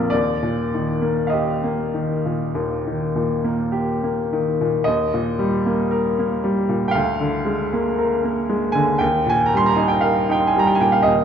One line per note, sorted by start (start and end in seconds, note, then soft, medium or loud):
0.00 0.14 A#1 soft
0.00 0.14 F2 soft
0.00 0.14 F3 soft
0.00 0.13 A#3 soft
0.00 0.10 D5 medium
0.10 2.49 D#2 soft
0.10 1.23 D5 medium
0.43 0.90 A#2 soft
0.74 1.21 D#3 soft
1.02 1.50 A#3 soft
1.27 3.70 D#5 soft
1.27 1.34 F5 soft
1.33 1.81 G4 soft
1.64 2.11 A#3 soft
1.94 2.42 D#3 soft
2.26 2.72 A#2 soft
2.55 4.84 D#2 soft
2.87 3.32 D#3 soft
3.16 3.61 A#2 soft
3.44 3.90 A#3 soft
3.72 4.19 G4 soft
4.03 4.50 A#3 soft
4.33 4.77 D#3 soft
4.61 4.87 A#2 soft
4.84 6.90 D#2 soft
4.84 6.86 D#5 medium
5.14 5.55 A#2 soft
5.39 5.81 G3 soft
5.66 6.07 A#3 soft
5.91 6.33 A#4 soft
6.19 6.59 A#3 soft
6.44 6.84 G3 soft
6.69 6.94 A#2 soft
6.88 8.75 F5 medium
6.88 6.94 G5 medium
6.95 8.98 D2 soft
7.20 7.62 D3 soft
7.45 7.87 G#3 soft
7.73 8.14 A#3 soft
7.98 8.40 A#4 soft
8.24 8.66 A#3 soft
8.49 8.91 G#3 soft
8.72 9.02 D3 soft
8.72 9.00 G#5 medium
8.98 11.03 D#2 medium
8.98 9.31 G5 medium
9.26 9.68 A#2 soft
9.26 9.48 G#5 medium
9.46 9.60 A#5 soft
9.54 9.95 G3 soft
9.54 9.69 C6 medium
9.66 9.78 A#5 medium
9.75 10.19 D#4 soft
9.75 9.89 G#5 soft
9.88 10.03 G5 medium
10.01 10.45 A#4 soft
10.01 10.34 F5 medium
10.29 10.71 D#4 soft
10.29 10.48 G5 medium
10.47 10.60 G#5 soft
10.56 10.97 G3 soft
10.56 10.69 A#5 medium
10.67 10.76 G5 medium
10.75 10.85 G#5 medium
10.81 11.22 A#2 soft
10.81 10.93 G5 medium
10.92 11.05 F5 medium
11.03 11.24 D#2 soft
11.03 11.24 D#5 medium